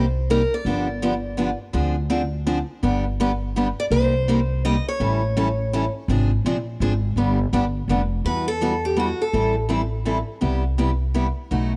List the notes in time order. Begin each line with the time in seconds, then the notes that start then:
Already playing: C2 C5
0.30 C3 G3 A#3 D#4 G4 A#4
0.54 D5
0.65 G1 D3 F3 B3 D4 G4
1.02 D3 F3 B3 D4 G4
1.37 D3 F3 B3 D4 G4
1.73 D2 D3 F3 C4 D4 G#4
2.10 D3 F3 C4 D4 G#4
2.47 D3 F3 C4 D4 G#4
2.83 G1 D3 G3 B3 D4 G4
3.20 D3 G3 B3 D4 G4
3.56 D3 G3 B3 D4 G4
3.80 D5
3.91 C2 C3 G3 A#3 D#4 G4 C5
4.28 C3 G3 A#3 D#4 G4
4.65 C3 G3 A#3 D#4 G4 D#5
4.88 C#5
5.00 A1 E3 G3 C#4 E4 A4
5.37 E3 G3 C#4 E4 A4
5.73 E3 G3 C#4 E4 A4
6.08 G#1 C3 F3 C4 D4 G#4
6.45 A#1 C3 F3 C4 D4 G#4
6.80 G#1 C3 F3 C4 D4 G#4
7.16 G1 D3 G3 B3 D4 G4
7.53 G1 D3 G3 B3 D4 G4
7.88 F1 D3 G3 B3 D4 G4
8.25 E2 E3 G3 B3 F#4 B4
8.48 A4
8.61 E3 G3 B3 F#4
8.85 G4
8.96 E3 G3 B3 F#4
9.22 A4
9.33 A1 E3 G3 C4 E4 A4
9.69 E3 G3 C4 E4 A4
10.05 E3 G3 C4 E4 A4
10.41 C2 C3 G3 B3 E4 G4
10.78 C3 G3 B3 E4 G4
11.14 C3 G3 B3 E4 G4
11.51 B1 B2 F#3 A3 D#4 F#4